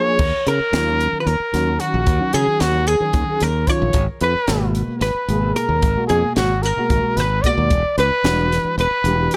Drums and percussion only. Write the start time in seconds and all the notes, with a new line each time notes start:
0.19 kick, crash
0.47 closed hi-hat
0.73 snare, closed hi-hat
1.01 closed hi-hat
1.27 closed hi-hat
1.54 snare, closed hi-hat
1.80 closed hi-hat
2.07 kick, closed hi-hat
2.33 closed hi-hat
2.60 snare, closed hi-hat
2.87 closed hi-hat
3.13 kick, closed hi-hat
3.40 snare, closed hi-hat
3.67 kick, closed hi-hat
3.93 kick, closed hi-hat
4.21 closed hi-hat
4.47 snare, closed hi-hat
4.75 closed hi-hat
5.01 snare, closed hi-hat
5.29 closed hi-hat
5.56 closed hi-hat
5.82 kick, closed hi-hat
6.09 closed hi-hat
6.36 snare, closed hi-hat
6.63 snare, closed hi-hat
6.90 kick, closed hi-hat
7.17 snare, closed hi-hat
7.44 kick, closed hi-hat
7.70 kick, closed hi-hat
7.98 closed hi-hat
8.24 snare, closed hi-hat
8.52 snare, closed hi-hat
8.79 closed hi-hat
9.05 closed hi-hat
9.31 closed hi-hat